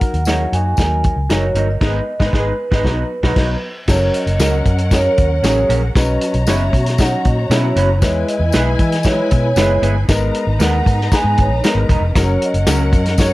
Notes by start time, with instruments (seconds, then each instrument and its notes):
Already playing: grand piano F#3 D#4 A#4, vibraphone F#5
0.00 horn section D#4 F#4 A#4, kick, closed hi-hat
0.14 fingered electric bass D#2, closed hi-hat
0.25 grand piano F#3 D#4 C#5, clean electric guitar A#3 D#4 F#4 A#4, horn section C#4 E4 G#4, vibraphone F#5, snare, closed hi-hat, tambourine
0.52 fingered electric bass F#2, horn section A#3 D#4 F#4, vibraphone G#5, closed hi-hat
0.77 fingered electric bass D#2, grand piano F#3 D#4 A#4, kick, snare, closed hi-hat, tambourine
1.04 kick, closed hi-hat
1.16 fingered electric bass C#2
1.29 fingered electric bass F#1, grand piano F#3 D#4 F#4, clean electric guitar A#3 D#4 F#4 A#4, vibraphone C#5, snare, closed hi-hat, tambourine
1.54 fingered electric bass G1, clean electric guitar A#3 D#4 F#4 A#4, vibraphone D#5, closed hi-hat
1.70 vibraphone D#5
1.81 fingered electric bass G#1, grand piano G#3 D#4, clean electric guitar B3 D#4 G#4 B4, horn section D#4 G#4 B4, kick, snare, crash
1.87 grand piano B4
2.20 fingered electric bass G#1, grand piano G#3 D#4, clean electric guitar B3 D#4 G#4 B4, horn section D#4 G#4 B4, kick, snare
2.26 grand piano B4
2.33 fingered electric bass G#1, grand piano G#3 D#4, clean electric guitar B3 D#4 G#4 B4, horn section B3 D#4 G#4, vibraphone B4, kick, snare
2.39 grand piano B4
2.60 vibraphone B4
2.71 fingered electric bass G#1, grand piano G#3 D#4, clean electric guitar B3 D#4 G#4 B4, horn section B3 D#4, kick, snare
2.78 grand piano B4
2.84 fingered electric bass B1, grand piano F#3 B4, clean electric guitar B3 D#4 F#4 B4, horn section B3 D#4 F#4, kick, snare
2.91 grand piano D#4
3.23 fingered electric bass B1, grand piano F#3 D#4 B4, clean electric guitar B3 D#4 F#4 B4, horn section B3 D#4 F#4, kick, snare
3.36 fingered electric bass B1, grand piano F#3 D#4 B4, clean electric guitar B3 D#4 F#4 B4, horn section B3 D#4 F#4, kick, snare, crash
3.88 fingered electric bass F#1, grand piano F#3 C#4 A4, string section C#4 A#4 F#5, vibraphone C#5, kick, snare, crash, tambourine
3.95 grand piano A#4
4.14 vibraphone D#5, closed hi-hat
4.26 fingered electric bass F#1, closed hi-hat
4.39 fingered electric bass C#2, grand piano F#3 C#4 A#4, clean electric guitar A#3 C#4 F#4 A#4, snare, closed hi-hat, tambourine
4.65 fingered electric bass F#2, kick, closed hi-hat
4.78 closed hi-hat
4.91 grand piano F#3 C#4 G#4, vibraphone C#5, kick, snare, closed hi-hat, tambourine
4.98 grand piano A#4
5.18 fingered electric bass D#2, kick, closed hi-hat
5.42 fingered electric bass A1, grand piano F#3 C#4 G#4, clean electric guitar A#3 C#4 F#4 A#4, snare, closed hi-hat, tambourine
5.69 fingered electric bass A#1, clean electric guitar A#3 C#4 F#4 A#4, closed hi-hat
5.95 fingered electric bass B1, grand piano F#3 C#4 B4, string section F#4 C#5 A#5, vibraphone D#5, kick, snare, closed hi-hat, tambourine
6.21 closed hi-hat
6.34 fingered electric bass B1, closed hi-hat
6.41 vibraphone D#5
6.47 fingered electric bass F#1, grand piano F#3 C#4 C#5, clean electric guitar B3 C#4 F#4 B4, vibraphone E5, snare, closed hi-hat, tambourine
6.73 fingered electric bass B2, kick, closed hi-hat
6.86 snare, closed hi-hat
6.98 grand piano F#3 C#4 D#4, vibraphone F#5, kick, snare, closed hi-hat, tambourine
7.25 fingered electric bass A#2, vibraphone D#5, kick, closed hi-hat
7.50 fingered electric bass B2, grand piano F#3 C#4 E4, clean electric guitar B3 C#4 F#4 B4, vibraphone C#5, snare, closed hi-hat, tambourine
7.76 fingered electric bass F#1, clean electric guitar B3 C#4 F#4 B4, closed hi-hat
8.01 fingered electric bass E2, grand piano G#3 E4 B4, string section E4 B4 G#5, vibraphone C#5, kick, snare, closed hi-hat, tambourine
8.28 vibraphone D#5, closed hi-hat
8.39 fingered electric bass E2
8.52 fingered electric bass B1, grand piano G#3 E4 B4, clean electric guitar B3 E4 G#4 B4, snare, closed hi-hat, tambourine
8.79 fingered electric bass E3, kick, closed hi-hat
8.92 snare, closed hi-hat
9.03 grand piano F#3 E4 B4, vibraphone C#5, kick, snare, closed hi-hat, tambourine
9.12 grand piano G#3
9.31 fingered electric bass B2, kick, closed hi-hat
9.56 fingered electric bass F#1, grand piano G#3 E4 B4, clean electric guitar B3 E4 G#4 B4, snare, closed hi-hat, tambourine
9.82 fingered electric bass G1, clean electric guitar B3 E4 G#4 B4, closed hi-hat
10.09 fingered electric bass G#1, grand piano G#3 B3 A#4, string section D#4 B4 A#5, vibraphone D#5, kick, snare, closed hi-hat, tambourine
10.35 closed hi-hat
10.47 fingered electric bass G#1
10.59 fingered electric bass D#2, clean electric guitar G#3 B3 D#4 A#4, grand piano G#3 B3 A#4, vibraphone F#5, snare, closed hi-hat, tambourine
10.86 fingered electric bass G#2, kick, closed hi-hat
11.01 snare
11.12 grand piano G#3 B3 A#5, horn section D#4 G#4 B4, vibraphone G#5, kick, snare, closed hi-hat, tambourine
11.24 fingered electric bass G#2
11.37 fingered electric bass G#1, vibraphone C#5, kick, closed hi-hat
11.49 fingered electric bass A#1
11.64 grand piano G#3 B3 A#4, clean electric guitar G#3 B3 D#4 A#4, vibraphone D#5, snare, closed hi-hat, tambourine
11.75 fingered electric bass G#1
11.89 fingered electric bass E1, clean electric guitar G#3 B3 D#4 A#4, kick, closed hi-hat
12.00 fingered electric bass F1
12.15 fingered electric bass F#1, grand piano F#3 C#4 A#4, string section C#4 A#4 F#5, kick, snare, closed hi-hat, tambourine
12.19 vibraphone C#5
12.42 vibraphone D#5, closed hi-hat
12.54 fingered electric bass F#1, closed hi-hat
12.67 fingered electric bass C#2, grand piano F#3 C#4 A#4, clean electric guitar A#3 C#4 F#4 A#4, snare, closed hi-hat, tambourine
12.92 fingered electric bass F#2, kick, closed hi-hat
13.05 snare, closed hi-hat
13.18 grand piano F#3 C#4 C#5, vibraphone C#5, kick, snare, closed hi-hat, tambourine